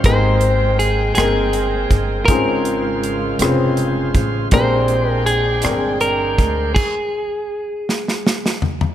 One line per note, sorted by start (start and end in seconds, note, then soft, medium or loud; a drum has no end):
0.00 6.72 G#3 medium
0.00 2.24 G#3 soft
0.00 2.26 A#3 medium
0.00 2.24 A#4 soft
0.00 6.73 C5 medium
0.04 1.12 G#1 medium
0.04 1.13 G#2 soft
0.04 0.11 B3 medium
0.04 2.25 C4 soft
0.04 0.82 D#4 medium
0.04 0.82 G4 medium
0.04 0.82 G#4 medium
0.04 0.83 A#4 medium
0.04 0.79 C5 medium
0.04 2.26 G5 medium
0.04 2.24 G5 soft
0.04 kick medium
0.04 closed hi-hat medium
0.12 0.85 C4 medium
0.41 closed hi-hat soft
0.79 1.14 G#4 medium
0.79 closed hi-hat soft
1.15 1.87 G1 medium
1.15 1.23 A#3 soft
1.15 1.93 D#4 soft
1.15 2.25 G#4 medium
1.15 1.94 G#4 soft
1.15 1.94 A#4 medium
1.15 1.94 G5 soft
1.15 cross-stick medium
1.15 closed hi-hat medium
1.23 1.97 C4 soft
1.53 closed hi-hat soft
1.91 2.25 G1 medium
1.91 kick medium
1.91 closed hi-hat soft
2.25 3.36 G#1 medium
2.25 4.50 C#3 medium
2.25 4.49 C#3 soft
2.25 4.49 G#3 soft
2.25 3.06 C4 medium
2.25 3.06 C#4 medium
2.25 4.48 F4 soft
2.25 4.50 F4 medium
2.25 4.10 A#4 medium
2.25 4.49 C5 soft
2.25 kick medium
2.25 closed hi-hat medium
2.30 3.37 G#2 medium
2.30 3.06 F4 medium
2.30 3.06 G#4 medium
2.30 3.07 C5 medium
2.65 closed hi-hat soft
3.03 closed hi-hat soft
3.39 4.11 F1 medium
3.39 4.18 C4 medium
3.39 4.18 C#4 medium
3.39 4.18 F4 medium
3.39 4.18 G#4 medium
3.39 3.48 B4 soft
3.39 cross-stick medium
3.39 closed hi-hat medium
3.49 4.22 C5 medium
3.77 closed hi-hat soft
4.14 4.49 A1 medium
4.14 kick medium
4.14 closed hi-hat soft
4.51 5.60 A#1 medium
4.51 5.61 A#2 medium
4.51 6.73 G#3 soft
4.51 5.30 C4 medium
4.51 6.74 D4 medium
4.51 5.30 D4 medium
4.51 6.73 D4 soft
4.51 5.30 G4 medium
4.51 5.31 G#4 medium
4.51 5.31 A#4 medium
4.51 4.60 B4 soft
4.51 5.10 C5 medium
4.51 6.74 G5 medium
4.51 6.73 G5 soft
4.51 kick medium
4.51 closed hi-hat medium
4.59 6.76 C5 medium
4.88 closed hi-hat soft
5.10 5.26 A#4 medium
5.26 6.01 G#4 medium
5.26 closed hi-hat soft
5.62 6.35 G1 medium
5.62 6.41 C4 soft
5.62 6.41 D4 soft
5.62 6.42 G#4 soft
5.62 6.42 A#4 medium
5.62 6.41 G5 soft
5.62 cross-stick medium
5.62 closed hi-hat medium
6.01 6.74 A#4 medium
6.01 closed hi-hat soft
6.38 6.73 D2 medium
6.38 kick medium
6.38 closed hi-hat soft
6.75 8.58 G#4 medium
6.75 kick medium
6.75 crash medium
7.89 snare soft
8.08 snare soft
8.27 snare medium
8.46 snare medium
8.62 floor tom medium
8.81 floor tom medium